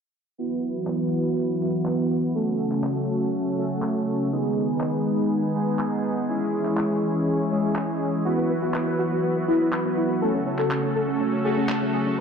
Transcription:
0.38 analog synth pad E3 F#3 B3 F#4 B4, supersaw synth B3 E4 F#4 B4
0.87 clap
1.61 supersaw synth B3 E4 F#4 B4
1.85 clap
2.35 analog synth pad C#3 F#3 A3 A4, supersaw synth A3 C#4 F#4 A4
2.72 clap
2.84 clap
3.58 supersaw synth A3 C#4 F#4 A4
3.82 clap
4.32 analog synth pad D#3 G#3 B3 G#4 B4, supersaw synth G#3 B3 D#4 G#4
4.81 clap
5.55 supersaw synth G#3 B3 D#4 G#4
5.79 clap
6.28 analog synth pad E3 G#3 C#4 G#4 C#5, supersaw synth G#3 C#4 E4 G#4
6.65 clap
6.77 clap
7.51 supersaw synth G#3 C#4 E4 G#4
7.76 clap
8.25 analog synth pad E3 F#3 B3 F#4 B4, supersaw synth B3 E4 F#4 B4, synth pluck F#4
8.38 synth pluck B3
8.50 synth pluck B3
8.62 synth pluck F#4
8.74 synth pluck B3, clap
8.87 synth pluck B3
8.99 synth pluck F#4
9.11 synth pluck B3
9.23 synth pluck B3
9.36 synth pluck B3
9.48 supersaw synth B3 E4 F#4 B4, synth pluck E4
9.61 synth pluck B3
9.72 synth pluck B3, clap
9.85 synth pluck B3
9.97 synth pluck E4
10.10 synth pluck B3
10.22 analog synth pad C#3 A3 A4, supersaw synth A3 C#4 F#4 A4, synth pluck A4
10.34 synth pluck C#4
10.46 synth pluck C#4
10.59 synth pluck A4, clap
10.71 synth pluck C#4, clap
10.83 synth pluck C#4
10.96 synth pluck A4
11.08 synth pluck C#4
11.20 synth pluck C#4
11.33 synth pluck C#4
11.45 supersaw synth A3 C#4 F#4 A4, synth pluck G#4
11.57 synth pluck C#4
11.69 synth pluck C#4, clap
11.82 synth pluck C#4
11.94 synth pluck G#4
12.06 synth pluck C#4

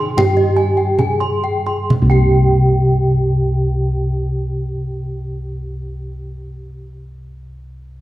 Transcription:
Already playing: kettle gongs D#4, bronze metallophone G#4
0.00 bronze metallophone C6
0.17 kettle gongs G2, bronze metallophone G4 G5, kendang low
0.37 bronze metallophone D#5, kendang slap
0.57 bronze metallophone G#5
0.77 bronze metallophone G5
0.98 kettle gongs C#4, bronze metallophone G#4 G#5, kendang low
1.20 bronze metallophone C6, kendang slap
1.44 bronze metallophone G5
1.66 bronze metallophone C6, kendang slap
1.90 kendang low
2.02 kettle gongs C2
2.10 bronze metallophone G4 G5

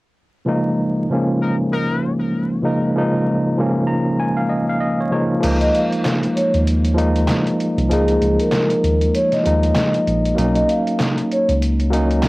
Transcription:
0.45 tine electric piano C#2 F3 G#3 A#3 D#4
1.10 tine electric piano C#2 F3 G#3 A#3 C#4
1.42 trumpet section D#4 A#4
1.72 trumpet section D#4 A#4
2.61 tine electric piano C#2 F3 G#3 A#3 D#4
2.95 tine electric piano C#2 F3 G#3 A#3 D#4
3.57 tine electric piano C#2 F3 G#3 A#3 C#4
3.87 tine electric piano A#5
4.20 tine electric piano G#5
4.37 tine electric piano F5
4.49 tine electric piano D#5
4.69 tine electric piano F5
4.80 tine electric piano D#5
5.01 tine electric piano C#5
5.10 tine electric piano C#2 F3 G#3 A#3 D#4 C#5
5.40 tine electric piano C#2 F3 G#3 A#3 D#4, closed hi-hat, crash
5.61 vibraphone D#5, closed hi-hat
5.75 vibraphone F5, closed hi-hat
5.92 closed hi-hat
6.05 snare, clap, closed hi-hat
6.23 closed hi-hat
6.36 vibraphone C#5, closed hi-hat
6.54 tine electric piano D#2, closed hi-hat
6.67 closed hi-hat
6.85 closed hi-hat
6.94 tine electric piano F3 G#3 A#3 D#4, closed hi-hat
7.16 closed hi-hat
7.28 snare, clap, closed hi-hat
7.47 closed hi-hat
7.60 closed hi-hat
7.78 tine electric piano C2, closed hi-hat
7.89 tine electric piano C#2 F3 G#3 A#3 D#4, vibraphone G#4, closed hi-hat
8.08 closed hi-hat
8.22 tine electric piano C#2, closed hi-hat
8.40 vibraphone A#4, closed hi-hat
8.52 snare, clap, closed hi-hat
8.70 closed hi-hat
8.84 tine electric piano D#2, closed hi-hat
9.01 closed hi-hat
9.15 vibraphone C#5, closed hi-hat
9.32 vibraphone D#5, snare, closed hi-hat
9.43 tine electric piano D#2 F3 G#3 A#3 D#4, vibraphone D#5, closed hi-hat
9.63 closed hi-hat
9.75 snare, clap, closed hi-hat
9.94 closed hi-hat
10.07 tine electric piano A#1, closed hi-hat
10.25 closed hi-hat
10.35 tine electric piano B1 F#3 A#3 C#4 D#4, closed hi-hat
10.55 vibraphone D#5, closed hi-hat
10.68 vibraphone F5, closed hi-hat
10.87 closed hi-hat
10.99 snare, clap, closed hi-hat
11.18 closed hi-hat
11.31 vibraphone C#5, closed hi-hat
11.49 tine electric piano C#2, closed hi-hat
11.62 closed hi-hat
11.80 closed hi-hat
11.90 tine electric piano F#3 A#3 C#4 D#4, closed hi-hat
12.11 closed hi-hat
12.23 snare, clap, closed hi-hat

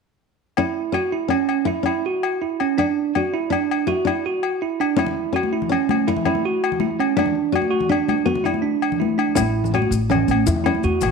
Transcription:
0.57 nylon-string guitar C#4, tine electric piano E4, low agogo
0.92 nylon-string guitar C#4, tine electric piano F#4, low agogo
1.12 tine electric piano E4
1.28 nylon-string guitar C#4, tine electric piano C#4, low agogo
1.49 low agogo
1.65 nylon-string guitar E4, tine electric piano E4
1.83 nylon-string guitar C#4, tine electric piano E4, low agogo
2.06 tine electric piano F#4
2.23 low agogo
2.42 tine electric piano E4
2.60 tine electric piano C#4, low agogo
2.78 tine electric piano D4, nylon-string guitar D4, low agogo
3.15 nylon-string guitar D4, tine electric piano F#4, low agogo
3.33 tine electric piano E4
3.50 nylon-string guitar D4, tine electric piano D4, low agogo
3.71 low agogo
3.87 nylon-string guitar E4, tine electric piano F#4
4.05 nylon-string guitar D4, tine electric piano E4, low agogo
4.26 tine electric piano F#4
4.43 low agogo
4.62 tine electric piano E4
4.80 tine electric piano D4, low agogo
4.96 nylon-string guitar C#4, tine electric piano E4, high conga, low agogo
5.06 low conga
5.33 nylon-string guitar C#4, tine electric piano F#4, low agogo
5.43 high conga
5.53 tine electric piano E4
5.62 low conga
5.69 nylon-string guitar C#4, tine electric piano C#4, low agogo
5.89 high conga, low agogo
6.08 tine electric piano E4, nylon-string guitar E4
6.16 low conga
6.25 nylon-string guitar C#4, tine electric piano E4, low agogo
6.35 high conga
6.45 tine electric piano F#4
6.64 low agogo
6.72 low conga
6.80 tine electric piano E4, high conga
7.00 tine electric piano C#4, low agogo
7.17 nylon-string guitar D4, tine electric piano D4, high conga, low agogo
7.26 low conga
7.35 low conga
7.52 nylon-string guitar D4, tine electric piano F#4, low agogo
7.62 high conga
7.70 tine electric piano F#4
7.80 low conga
7.89 nylon-string guitar D4, tine electric piano D4, low conga, low agogo
8.08 high conga, low agogo
8.18 low conga
8.26 nylon-string guitar B3, tine electric piano F#4
8.35 low conga
8.44 nylon-string guitar D4, tine electric piano E4, low agogo
8.54 high conga, low conga
8.62 tine electric piano D4
8.82 low conga, low agogo
8.92 low conga
9.00 tine electric piano E4, high conga
9.18 tine electric piano D4, low agogo
9.29 low conga
9.35 upright bass A1, nylon-string guitar C#4, tine electric piano E4, high conga, low agogo, maracas
9.64 low conga, maracas
9.74 nylon-string guitar C#4, tine electric piano F#4, low agogo
9.82 high conga
9.91 upright bass A1, maracas
10.10 tine electric piano C#4, nylon-string guitar C#4, low conga, low agogo
10.28 upright bass A1, high conga, low agogo, maracas
10.46 upright bass E2, tine electric piano E4, nylon-string guitar E4, maracas
10.56 low conga
10.64 nylon-string guitar C#4, tine electric piano E4, low agogo
10.75 high conga
10.83 upright bass E2, tine electric piano F#4, maracas
11.01 upright bass A1, low conga, low agogo, maracas

